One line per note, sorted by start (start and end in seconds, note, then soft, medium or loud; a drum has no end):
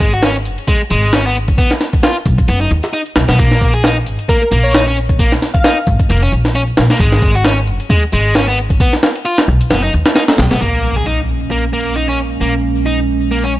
0.00 0.46 G#1 medium
0.00 0.12 G#3 loud
0.00 kick medium
0.00 closed hi-hat medium
0.13 0.23 F#4 medium
0.13 closed hi-hat medium
0.23 0.35 C#4 medium
0.23 snare loud
0.23 closed hi-hat medium
0.36 closed hi-hat soft
0.45 0.54 F#1 medium
0.45 closed hi-hat medium
0.58 closed hi-hat medium
0.68 0.80 G#3 medium
0.68 kick loud
0.68 closed hi-hat medium
0.81 closed hi-hat soft
0.90 1.53 G#1 medium
0.90 1.12 G#3 medium
0.90 closed hi-hat medium
1.03 closed hi-hat medium
1.13 1.25 C#4 medium
1.13 snare loud
1.13 closed hi-hat medium
1.26 1.35 B3 medium
1.26 closed hi-hat soft
1.35 closed hi-hat medium
1.48 kick medium
1.48 closed hi-hat medium
1.58 1.70 B3 medium
1.58 kick loud
1.58 closed hi-hat medium
1.58 closed hi-hat soft
1.70 snare soft
1.70 closed hi-hat soft
1.81 snare soft
1.81 closed hi-hat medium
1.93 kick loud
1.93 closed hi-hat medium
2.03 2.15 F4 medium
2.03 snare loud
2.03 closed hi-hat soft
2.03 closed hi-hat medium
2.16 closed hi-hat soft
2.26 2.34 B1 loud
2.26 kick loud
2.26 closed hi-hat medium
2.38 kick medium
2.38 closed hi-hat medium
2.48 2.65 F#1 loud
2.48 2.61 B3 medium
2.48 closed hi-hat medium
2.61 2.69 D#4 loud
2.61 closed hi-hat soft
2.71 2.80 D#2 loud
2.71 closed hi-hat medium
2.83 snare soft
2.83 closed hi-hat medium
2.93 3.00 D#4 medium
2.93 closed hi-hat medium
3.06 closed hi-hat soft
3.16 3.25 B1 loud
3.16 snare loud
3.16 closed hi-hat medium
3.28 3.36 B1 medium
3.28 3.38 B3 medium
3.28 snare medium
3.28 closed hi-hat medium
3.38 4.07 A#1 loud
3.38 3.73 A#3 loud
3.38 kick loud
3.38 closed hi-hat soft
3.38 closed hi-hat medium
3.51 snare soft
3.51 closed hi-hat soft
3.61 kick medium
3.61 closed hi-hat medium
3.74 3.83 G#4 medium
3.74 closed hi-hat medium
3.83 3.96 D#4 medium
3.83 snare loud
3.83 closed hi-hat soft
3.83 closed hi-hat medium
3.96 closed hi-hat soft
4.06 4.15 G#1 medium
4.06 closed hi-hat medium
4.19 closed hi-hat medium
4.29 4.41 A#3 medium
4.29 4.37 A#4 medium
4.29 kick loud
4.29 closed hi-hat medium
4.42 4.48 A#4 medium
4.42 closed hi-hat soft
4.52 5.37 A#1 medium
4.52 4.73 A#3 medium
4.52 closed hi-hat medium
4.63 4.82 C#5 medium
4.63 closed hi-hat medium
4.74 4.86 D#4 medium
4.74 snare loud
4.74 closed hi-hat soft
4.74 closed hi-hat medium
4.87 4.96 C#4 medium
4.87 closed hi-hat soft
4.97 closed hi-hat medium
5.09 kick medium
5.09 closed hi-hat medium
5.19 5.31 A#3 medium
5.19 kick loud
5.19 closed hi-hat soft
5.19 closed hi-hat medium
5.32 snare soft
5.32 closed hi-hat soft
5.42 snare soft
5.42 closed hi-hat medium
5.54 5.87 F5 loud
5.54 kick loud
5.54 closed hi-hat medium
5.64 5.77 D#4 medium
5.64 snare loud
5.64 closed hi-hat medium
5.64 closed hi-hat soft
5.77 closed hi-hat soft
5.87 5.96 G#1 medium
5.87 kick medium
5.87 closed hi-hat medium
6.00 kick medium
6.00 closed hi-hat medium
6.10 6.26 F1 loud
6.10 6.22 A#3 medium
6.10 closed hi-hat medium
6.22 6.31 C#4 loud
6.22 closed hi-hat soft
6.32 6.72 A#1 medium
6.32 closed hi-hat medium
6.45 snare soft
6.45 closed hi-hat medium
6.55 6.61 C#4 medium
6.55 closed hi-hat medium
6.67 closed hi-hat soft
6.77 6.86 A#1 loud
6.77 snare loud
6.77 closed hi-hat medium
6.90 7.00 A#3 medium
6.90 snare medium
6.90 closed hi-hat medium
7.00 7.68 G#1 loud
7.00 7.34 G#3 loud
7.00 kick loud
7.00 closed hi-hat medium
7.12 snare soft
7.12 closed hi-hat soft
7.22 kick loud
7.22 closed hi-hat medium
7.35 7.45 F#4 medium
7.35 closed hi-hat medium
7.45 7.57 C#4 medium
7.45 snare loud
7.45 closed hi-hat medium
7.58 closed hi-hat soft
7.67 7.76 F#1 medium
7.67 closed hi-hat medium
7.80 closed hi-hat medium
7.90 8.02 G#3 medium
7.90 kick loud
7.90 closed hi-hat medium
8.03 closed hi-hat soft
8.12 8.75 G#1 medium
8.12 8.34 G#3 medium
8.12 closed hi-hat medium
8.25 closed hi-hat medium
8.35 8.47 C#4 medium
8.35 snare loud
8.35 closed hi-hat medium
8.48 8.57 B3 medium
8.48 closed hi-hat soft
8.58 closed hi-hat medium
8.70 kick medium
8.70 closed hi-hat medium
8.80 8.93 B3 medium
8.80 kick loud
8.80 closed hi-hat medium
8.93 snare soft
8.93 closed hi-hat soft
9.03 snare loud
9.03 closed hi-hat medium
9.15 closed hi-hat medium
9.25 9.37 F4 medium
9.25 closed hi-hat medium
9.38 snare loud
9.38 closed hi-hat medium
9.38 closed hi-hat soft
9.48 9.57 B1 loud
9.61 closed hi-hat medium
9.71 9.87 F#1 loud
9.71 9.83 B3 medium
9.71 snare loud
9.71 closed hi-hat medium
9.83 9.91 D#4 loud
9.83 closed hi-hat soft
9.93 10.02 D#2 loud
9.93 closed hi-hat medium
10.06 snare loud
10.06 closed hi-hat medium
10.16 10.22 D#4 medium
10.16 snare loud
10.16 closed hi-hat medium
10.28 snare loud
10.28 closed hi-hat medium
10.28 closed hi-hat soft
10.38 10.47 B1 loud
10.38 snare loud
10.38 closed hi-hat medium
10.51 10.58 B1 loud
10.51 10.60 B3 medium
10.51 snare loud
10.51 closed hi-hat medium
10.60 12.40 A#1 medium
10.60 13.60 G#3 medium
10.60 10.95 A#3 loud
10.60 13.60 A#3 medium
10.60 13.60 C#4 medium
10.60 impact medium
10.96 11.05 G#4 medium
11.06 11.18 D#4 medium
11.51 11.63 A#3 medium
11.73 11.95 A#3 medium
11.96 12.08 D#4 medium
12.09 12.18 C#4 medium
12.41 13.60 A#1 medium
12.41 12.53 A#3 medium
12.86 12.98 D#4 medium
13.31 13.43 A#3 medium
13.44 13.52 C#4 loud